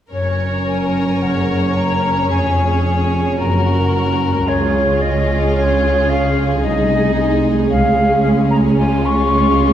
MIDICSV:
0, 0, Header, 1, 8, 480
1, 0, Start_track
1, 0, Key_signature, 6, "major"
1, 0, Tempo, 544465
1, 107, Time_signature, 4, 2, 24, 8
1, 3466, Tempo, 538117
1, 8638, End_track
2, 0, Start_track
2, 0, Title_t, "Flute"
2, 0, Program_c, 0, 73
2, 114, Note_on_c, 0, 73, 45
2, 558, Note_off_c, 0, 73, 0
2, 597, Note_on_c, 0, 80, 45
2, 1079, Note_on_c, 0, 78, 44
2, 1092, Note_off_c, 0, 80, 0
2, 1563, Note_on_c, 0, 82, 59
2, 1576, Note_off_c, 0, 78, 0
2, 2024, Note_off_c, 0, 82, 0
2, 2029, Note_on_c, 0, 80, 55
2, 2498, Note_off_c, 0, 80, 0
2, 2505, Note_on_c, 0, 80, 46
2, 2976, Note_off_c, 0, 80, 0
2, 2996, Note_on_c, 0, 82, 51
2, 3460, Note_off_c, 0, 82, 0
2, 3469, Note_on_c, 0, 82, 62
2, 3955, Note_on_c, 0, 73, 53
2, 3969, Note_off_c, 0, 82, 0
2, 4434, Note_on_c, 0, 75, 51
2, 4447, Note_off_c, 0, 73, 0
2, 4913, Note_off_c, 0, 75, 0
2, 4924, Note_on_c, 0, 73, 56
2, 5397, Note_on_c, 0, 77, 67
2, 5410, Note_off_c, 0, 73, 0
2, 5703, Note_off_c, 0, 77, 0
2, 5869, Note_on_c, 0, 75, 60
2, 6313, Note_off_c, 0, 75, 0
2, 6346, Note_on_c, 0, 75, 57
2, 6615, Note_off_c, 0, 75, 0
2, 6835, Note_on_c, 0, 77, 59
2, 7290, Note_off_c, 0, 77, 0
2, 7296, Note_on_c, 0, 77, 68
2, 7350, Note_off_c, 0, 77, 0
2, 7547, Note_on_c, 0, 82, 65
2, 7602, Note_off_c, 0, 82, 0
2, 7781, Note_on_c, 0, 80, 59
2, 8036, Note_on_c, 0, 85, 72
2, 8050, Note_off_c, 0, 80, 0
2, 8638, Note_off_c, 0, 85, 0
2, 8638, End_track
3, 0, Start_track
3, 0, Title_t, "Violin section"
3, 0, Program_c, 1, 48
3, 112, Note_on_c, 1, 73, 33
3, 2955, Note_off_c, 1, 73, 0
3, 2991, Note_on_c, 1, 70, 37
3, 3913, Note_off_c, 1, 70, 0
3, 3956, Note_on_c, 1, 68, 39
3, 7755, Note_off_c, 1, 68, 0
3, 7791, Note_on_c, 1, 65, 51
3, 8638, Note_off_c, 1, 65, 0
3, 8638, End_track
4, 0, Start_track
4, 0, Title_t, "Violin section"
4, 0, Program_c, 2, 48
4, 106, Note_on_c, 2, 70, 39
4, 1995, Note_off_c, 2, 70, 0
4, 2034, Note_on_c, 2, 68, 35
4, 2954, Note_off_c, 2, 68, 0
4, 3003, Note_on_c, 2, 66, 38
4, 3919, Note_off_c, 2, 66, 0
4, 3952, Note_on_c, 2, 65, 44
4, 5834, Note_off_c, 2, 65, 0
4, 5856, Note_on_c, 2, 63, 48
4, 6783, Note_off_c, 2, 63, 0
4, 6807, Note_on_c, 2, 61, 48
4, 8638, Note_off_c, 2, 61, 0
4, 8638, End_track
5, 0, Start_track
5, 0, Title_t, "Harp"
5, 0, Program_c, 3, 46
5, 105, Note_on_c, 3, 42, 39
5, 263, Note_on_c, 3, 58, 27
5, 425, Note_on_c, 3, 61, 31
5, 748, Note_on_c, 3, 70, 32
5, 1074, Note_on_c, 3, 49, 28
5, 1226, Note_off_c, 3, 58, 0
5, 1237, Note_on_c, 3, 58, 27
5, 1388, Note_off_c, 3, 61, 0
5, 1399, Note_on_c, 3, 61, 30
5, 1716, Note_off_c, 3, 70, 0
5, 1727, Note_on_c, 3, 70, 31
5, 2036, Note_on_c, 3, 41, 38
5, 2049, Note_off_c, 3, 42, 0
5, 2050, Note_off_c, 3, 49, 0
5, 2051, Note_off_c, 3, 58, 0
5, 2056, Note_off_c, 3, 70, 0
5, 2198, Note_on_c, 3, 56, 28
5, 2343, Note_off_c, 3, 61, 0
5, 2353, Note_on_c, 3, 61, 30
5, 2676, Note_on_c, 3, 68, 27
5, 2840, Note_on_c, 3, 73, 28
5, 2997, Note_on_c, 3, 42, 37
5, 3010, Note_off_c, 3, 41, 0
5, 3010, Note_off_c, 3, 68, 0
5, 3011, Note_off_c, 3, 56, 0
5, 3153, Note_on_c, 3, 54, 30
5, 3308, Note_off_c, 3, 61, 0
5, 3319, Note_on_c, 3, 61, 35
5, 3461, Note_off_c, 3, 73, 0
5, 3627, Note_on_c, 3, 66, 35
5, 3793, Note_on_c, 3, 73, 29
5, 3956, Note_on_c, 3, 49, 40
5, 3967, Note_off_c, 3, 66, 0
5, 3969, Note_off_c, 3, 54, 0
5, 3970, Note_off_c, 3, 42, 0
5, 4115, Note_on_c, 3, 56, 29
5, 4278, Note_on_c, 3, 65, 32
5, 4431, Note_off_c, 3, 73, 0
5, 4442, Note_on_c, 3, 73, 38
5, 4600, Note_on_c, 3, 68, 31
5, 4747, Note_off_c, 3, 73, 0
5, 4758, Note_on_c, 3, 73, 35
5, 4905, Note_off_c, 3, 61, 0
5, 4916, Note_on_c, 3, 61, 31
5, 5070, Note_off_c, 3, 56, 0
5, 5080, Note_on_c, 3, 56, 30
5, 5233, Note_off_c, 3, 65, 0
5, 5243, Note_on_c, 3, 65, 38
5, 5391, Note_off_c, 3, 73, 0
5, 5402, Note_on_c, 3, 73, 31
5, 5545, Note_off_c, 3, 68, 0
5, 5556, Note_on_c, 3, 68, 37
5, 5711, Note_off_c, 3, 73, 0
5, 5875, Note_on_c, 3, 48, 45
5, 5889, Note_off_c, 3, 61, 0
5, 5891, Note_off_c, 3, 49, 0
5, 5892, Note_off_c, 3, 65, 0
5, 6031, Note_off_c, 3, 56, 0
5, 6041, Note_on_c, 3, 56, 35
5, 6195, Note_on_c, 3, 63, 36
5, 6346, Note_off_c, 3, 68, 0
5, 6356, Note_on_c, 3, 68, 42
5, 6499, Note_off_c, 3, 63, 0
5, 6510, Note_on_c, 3, 63, 36
5, 6662, Note_off_c, 3, 68, 0
5, 6673, Note_on_c, 3, 68, 37
5, 6829, Note_on_c, 3, 49, 41
5, 6846, Note_off_c, 3, 63, 0
5, 6847, Note_off_c, 3, 48, 0
5, 6983, Note_on_c, 3, 61, 32
5, 7136, Note_off_c, 3, 68, 0
5, 7147, Note_on_c, 3, 68, 39
5, 7293, Note_off_c, 3, 61, 0
5, 7304, Note_on_c, 3, 61, 38
5, 7458, Note_on_c, 3, 73, 42
5, 7608, Note_off_c, 3, 68, 0
5, 7619, Note_on_c, 3, 68, 32
5, 7770, Note_off_c, 3, 49, 0
5, 7781, Note_on_c, 3, 49, 53
5, 7941, Note_off_c, 3, 61, 0
5, 7952, Note_on_c, 3, 61, 37
5, 8117, Note_on_c, 3, 65, 36
5, 8259, Note_off_c, 3, 68, 0
5, 8270, Note_on_c, 3, 68, 39
5, 8417, Note_off_c, 3, 73, 0
5, 8427, Note_on_c, 3, 73, 41
5, 8566, Note_off_c, 3, 68, 0
5, 8577, Note_on_c, 3, 68, 39
5, 8638, Note_off_c, 3, 49, 0
5, 8638, Note_off_c, 3, 56, 0
5, 8638, Note_off_c, 3, 61, 0
5, 8638, Note_off_c, 3, 65, 0
5, 8638, Note_off_c, 3, 68, 0
5, 8638, Note_off_c, 3, 73, 0
5, 8638, End_track
6, 0, Start_track
6, 0, Title_t, "Viola section"
6, 0, Program_c, 4, 48
6, 114, Note_on_c, 4, 61, 37
6, 3915, Note_off_c, 4, 61, 0
6, 3957, Note_on_c, 4, 61, 42
6, 5836, Note_off_c, 4, 61, 0
6, 5865, Note_on_c, 4, 56, 44
6, 8638, Note_off_c, 4, 56, 0
6, 8638, End_track
7, 0, Start_track
7, 0, Title_t, "Cello section"
7, 0, Program_c, 5, 48
7, 108, Note_on_c, 5, 42, 35
7, 1997, Note_off_c, 5, 42, 0
7, 2036, Note_on_c, 5, 41, 38
7, 2971, Note_off_c, 5, 41, 0
7, 2990, Note_on_c, 5, 42, 40
7, 3948, Note_off_c, 5, 42, 0
7, 3956, Note_on_c, 5, 37, 43
7, 5836, Note_off_c, 5, 37, 0
7, 5871, Note_on_c, 5, 36, 45
7, 6807, Note_off_c, 5, 36, 0
7, 6828, Note_on_c, 5, 37, 47
7, 8638, Note_off_c, 5, 37, 0
7, 8638, End_track
8, 0, Start_track
8, 0, Title_t, "Double bass section"
8, 0, Program_c, 6, 48
8, 116, Note_on_c, 6, 30, 31
8, 2000, Note_off_c, 6, 30, 0
8, 2026, Note_on_c, 6, 29, 33
8, 2966, Note_off_c, 6, 29, 0
8, 2984, Note_on_c, 6, 30, 38
8, 3945, Note_off_c, 6, 30, 0
8, 3949, Note_on_c, 6, 37, 39
8, 5833, Note_off_c, 6, 37, 0
8, 5867, Note_on_c, 6, 36, 38
8, 6805, Note_off_c, 6, 36, 0
8, 6827, Note_on_c, 6, 37, 46
8, 8638, Note_off_c, 6, 37, 0
8, 8638, End_track
0, 0, End_of_file